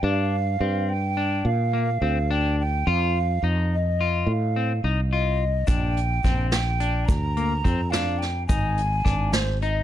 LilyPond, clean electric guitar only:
\new Staff \with { instrumentName = "Clean electric guitar" } { \time 5/8 \key g \phrygian \tempo 4 = 106 d'4 c'4 d'8~ | d'8 bes8 c'8 d'4 | f'4 ees'4 f'8~ | f'8 c'8 ees'8 f'4 |
d'4 c'4 d'8~ | d'8 bes8 c'8 d'4 | ees'4 d'4 ees'8 | }